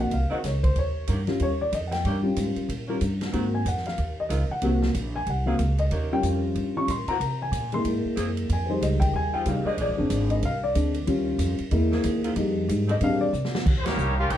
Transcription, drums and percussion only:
0.11 kick, ride
0.44 kick, snare, hi-hat pedal, ride
0.64 kick, ride
0.76 kick, ride
1.07 kick, hi-hat pedal, ride
1.27 snare, ride
1.40 kick, ride
1.73 kick, hi-hat pedal, ride
1.92 snare, ride
2.05 kick, ride
2.36 kick, hi-hat pedal, ride
2.56 ride
2.69 kick, ride
3.01 kick, hi-hat pedal, ride
3.21 snare, ride
3.33 kick, ride
3.66 kick, hi-hat pedal, ride
3.77 snare
3.86 snare, ride
3.98 kick, ride
4.30 kick, hi-hat pedal, ride
4.62 kick, ride
4.82 snare
4.95 kick, hi-hat pedal, ride
5.27 kick, ride
5.59 kick, hi-hat pedal, ride
5.78 ride
5.91 kick, ride
6.23 kick, hi-hat pedal, ride
6.55 kick, ride
6.88 kick, hi-hat pedal, ride
7.08 ride
7.20 kick, ride
7.53 kick, hi-hat pedal, ride
7.72 ride
7.85 kick, ride
8.17 kick, hi-hat pedal, ride
8.37 ride
8.49 kick, ride
8.82 kick, hi-hat pedal, ride
9.01 kick, ride
9.14 kick
9.46 kick, hi-hat pedal, ride
9.78 kick, ride
10.10 kick, hi-hat pedal, ride
10.30 ride
10.43 kick, ride
10.75 kick, hi-hat pedal, ride
10.94 ride
11.07 kick, ride
11.39 kick, hi-hat pedal, ride
11.59 ride
11.71 kick, ride
11.92 snare
12.04 kick, hi-hat pedal, ride
12.24 ride
12.36 kick, ride
12.69 kick, hi-hat pedal, ride
12.89 ride
13.01 kick, ride
13.33 hi-hat pedal
13.45 snare
13.55 snare
13.66 kick, crash
13.86 snare, ride
13.98 hi-hat pedal
14.30 kick, ride

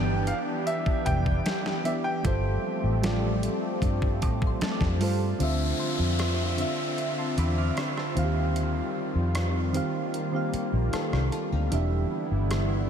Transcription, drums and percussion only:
0.27 closed hi-hat
0.67 closed hi-hat
0.86 kick
1.06 kick, closed hi-hat
1.26 kick
1.46 snare, closed hi-hat
1.66 snare
1.85 closed hi-hat
2.25 kick, closed hi-hat
3.04 snare, closed hi-hat
3.43 closed hi-hat
3.82 kick, closed hi-hat
4.02 kick
4.22 kick, closed hi-hat
4.42 kick
4.61 snare, closed hi-hat
4.81 kick, snare
5.01 open hi-hat
5.40 closed hi-hat
6.19 cross-stick, closed hi-hat
6.58 closed hi-hat
6.98 closed hi-hat
7.38 closed hi-hat
7.77 cross-stick, closed hi-hat
7.98 cross-stick
8.17 closed hi-hat
8.56 closed hi-hat
9.35 cross-stick, closed hi-hat
9.74 closed hi-hat
10.14 closed hi-hat
10.54 closed hi-hat
10.93 cross-stick, closed hi-hat
11.13 cross-stick
11.32 closed hi-hat
11.72 closed hi-hat
12.51 cross-stick, closed hi-hat

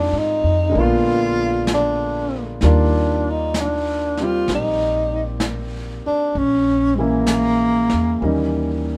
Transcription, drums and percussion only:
0.75 brush sweep
1.67 brush sweep, snare, hi-hat pedal
2.61 brush sweep, snare
3.54 brush sweep, snare, hi-hat pedal
4.17 snare
4.48 brush sweep, snare
5.40 brush sweep, snare, hi-hat pedal
6.34 brush sweep
7.27 brush sweep, snare, hi-hat pedal
7.89 snare
8.20 brush sweep

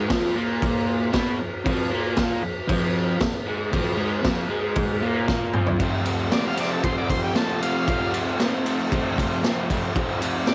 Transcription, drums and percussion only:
0.10 kick, snare, crash
0.62 kick, crash
1.13 kick, snare, crash
1.66 kick, crash
2.17 kick, snare, crash
2.69 kick, crash
3.21 kick, snare, crash
3.73 kick, crash
4.24 kick, snare, crash
4.76 kick, crash
5.28 kick, snare
5.54 mid tom
5.67 floor tom
5.80 kick, ride
6.05 ride
6.32 snare, ride
6.57 ride
6.84 kick, ride
7.10 kick, ride
7.36 snare, ride
7.62 ride
7.88 kick, ride
8.14 ride
8.40 snare, ride
8.66 ride
8.92 kick, ride
9.18 kick, ride
9.44 snare, ride
9.70 kick, ride
9.95 kick, ride
10.22 ride
10.47 snare, ride

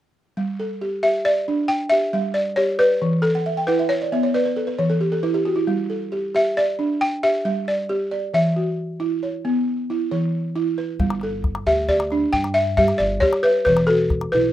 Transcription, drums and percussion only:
11.00 calabash thump
11.10 calabash click
11.21 calabash click
11.44 calabash thump, calabash click
11.55 calabash click
11.89 calabash thump
12.00 calabash click
12.11 calabash click
12.33 calabash thump
12.44 calabash click
12.77 calabash thump
12.88 calabash click
13.22 calabash thump
13.33 calabash click
13.66 calabash thump
13.77 calabash click
13.88 calabash click
14.10 calabash thump, calabash click
14.21 calabash click

